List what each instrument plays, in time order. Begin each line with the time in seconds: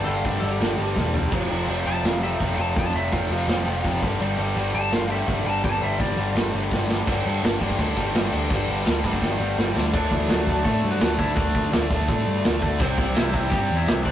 0.05 picked electric bass G1, distorted electric guitar G2 D3 G3, lead electric guitar A4
0.16 lead electric guitar F5
0.24 picked electric bass G1, distorted electric guitar G2 D3 G3, lead electric guitar D5, kick, crash
0.40 picked electric bass G1, distorted electric guitar G2 D3 G3, lead electric guitar A4
0.51 lead electric guitar G4
0.60 picked electric bass G1, distorted electric guitar G2 D3 G3, snare, crash
0.78 picked electric bass G1, distorted electric guitar G2 D3 G3
0.96 picked electric bass E1, distorted electric guitar G2 D3 G3, kick, snare
1.14 distorted electric guitar G2 D3 G3, floor tom
1.32 picked electric bass F1, distorted electric guitar F2 C3 F3, kick, crash
1.50 picked electric bass F1, distorted electric guitar F2 C3 F3
1.68 picked electric bass F1, distorted electric guitar F2 C3 F3, crash
1.86 picked electric bass F1, distorted electric guitar F2 C3 F3, lead electric guitar A5
2.04 picked electric bass F1, distorted electric guitar F2 C3 F3, lead electric guitar F5, snare, crash
2.23 distorted electric guitar F2 C3 F3, lead electric guitar E5
2.40 picked electric bass F1, distorted electric guitar F2 C3 F3, kick, crash
2.58 picked electric bass F1, distorted electric guitar F2 C3 F3, lead electric guitar A5
2.76 picked electric bass F1, distorted electric guitar F2 C3 F3, lead electric guitar A5, kick, crash
2.94 picked electric bass F1, distorted electric guitar F2 C3 F3, lead electric guitar E5
3.12 picked electric bass F1, distorted electric guitar F2 C3 F3, lead electric guitar F5, kick, crash
3.30 picked electric bass F1, distorted electric guitar F2 C3 F3
3.47 picked electric bass F1, distorted electric guitar F2 C3 F3, snare, crash
3.66 picked electric bass F1, distorted electric guitar F2 C3 F3
3.83 picked electric bass F1, distorted electric guitar F2 C3 F3, kick, crash
4.02 picked electric bass G1, distorted electric guitar G2 D3 G3, kick
4.20 picked electric bass G1, distorted electric guitar G2 D3 G3, crash
4.39 picked electric bass G1, distorted electric guitar G2 D3 G3
4.56 picked electric bass G1, distorted electric guitar G2 D3 G3, crash
4.74 picked electric bass G1, distorted electric guitar G2 D3 G3, lead electric guitar A5
4.91 picked electric bass G1, distorted electric guitar G2 D3 G3, lead electric guitar F5, snare, crash
5.09 distorted electric guitar G2 D3 G3, lead electric guitar E5
5.27 picked electric bass G1, distorted electric guitar G2 D3 G3, kick, crash
5.45 picked electric bass G1, distorted electric guitar G2 D3 G3, lead electric guitar A5
5.63 picked electric bass G1, distorted electric guitar G2 D3 G3, lead electric guitar A5, kick, crash
5.82 picked electric bass G1, distorted electric guitar G2 D3 G3, lead electric guitar E5
6.00 picked electric bass G1, distorted electric guitar G2 D3 G3, lead electric guitar D5, kick, crash
6.17 picked electric bass G1, distorted electric guitar G2 D3 G3
6.35 picked electric bass G1, distorted electric guitar G2 D3 G3, snare, crash
6.54 picked electric bass G1, distorted electric guitar G2 D3 G3
6.71 picked electric bass G1, distorted electric guitar G2 D3 G3, kick, snare
6.89 distorted electric guitar G2 D3 G3, snare
7.07 picked electric bass G1, distorted electric guitar G2 D3 G3, kick, crash
7.26 distorted electric guitar G2 D3 G3, picked electric bass G2, crash
7.43 picked electric bass G1, distorted electric guitar G2 D3 G3, snare, crash
7.61 picked electric bass G1, distorted electric guitar G2 D3 G3, kick, crash
7.70 kick
7.79 picked electric bass D2, distorted electric guitar G2 D3 G3, kick, crash
7.97 picked electric bass G1, distorted electric guitar G2 D3 G3, kick, crash
8.15 picked electric bass G1, distorted electric guitar G2 D3 G3, snare, crash
8.32 picked electric bass D2, distorted electric guitar G2 D3 G3, crash
8.50 picked electric bass G1, distorted electric guitar G2 D3 G3, kick, crash
8.68 picked electric bass G1, distorted electric guitar G2 D3 G3, crash
8.86 picked electric bass D2, distorted electric guitar G2 D3 G3, snare, crash
9.04 picked electric bass G1, distorted electric guitar G2 D3 G3, kick, crash
9.13 kick
9.22 picked electric bass G1, distorted electric guitar G2 D3 G3, kick, snare
9.40 picked electric bass G1, distorted electric guitar G2 D3 G3
9.58 picked electric bass G1, distorted electric guitar G2 D3 G3, snare
9.75 picked electric bass D2, distorted electric guitar G2 D3 G3, snare
9.93 picked electric bass D2, distorted electric guitar D3 A3 D4, lead electric guitar D4 D5, kick, crash
10.12 picked electric bass D2, lead electric guitar E3 E4, kick
10.29 picked electric bass D2, distorted electric guitar D3 A3 D4, lead electric guitar F#3 F#4, snare, open hi-hat
10.47 picked electric bass D2, distorted electric guitar D3 A3 D4, kick
10.64 picked electric bass A2, distorted electric guitar D3 A3 D4, lead electric guitar A3 A4, kick, open hi-hat
10.84 picked electric bass G2
10.91 lead electric guitar F#3 F#4
11.00 picked electric bass D2, distorted electric guitar D3 A3 D4, snare, open hi-hat
11.18 picked electric bass D2, distorted electric guitar D3 A3 D4, lead electric guitar E3 E4, kick
11.35 picked electric bass D2, distorted electric guitar D3 A3 D4, lead electric guitar D4 D5, kick, open hi-hat
11.55 picked electric bass D2, kick
11.72 picked electric bass D2, distorted electric guitar D3 A3 D4, snare, open hi-hat
11.91 picked electric bass D2, distorted electric guitar D3 A3 D4, kick
12.08 picked electric bass A2, distorted electric guitar D3 A3 D4, kick, open hi-hat
12.27 picked electric bass G2
12.44 picked electric bass D2, distorted electric guitar D3 A3 D4, snare, open hi-hat
12.62 picked electric bass D2, distorted electric guitar D3 A3 D4, kick
12.80 picked electric bass C2, distorted electric guitar C3 G3 C4, lead electric guitar C4 C5, kick, crash
12.97 picked electric bass C2, lead electric guitar D4 D5, kick
13.15 picked electric bass C2, distorted electric guitar C3 G3 C4, lead electric guitar E3 E4, snare, open hi-hat
13.34 picked electric bass C2, distorted electric guitar C3 G3 C4, kick
13.50 picked electric bass G2, distorted electric guitar C3 G3 C4, lead electric guitar G3 G4, kick, open hi-hat
13.71 picked electric bass E2
13.76 lead electric guitar E3 E4
13.87 picked electric bass C2, distorted electric guitar C3 G3 C4, snare, open hi-hat
14.03 picked electric bass C2, distorted electric guitar C3 G3 C4, lead electric guitar D4 D5, kick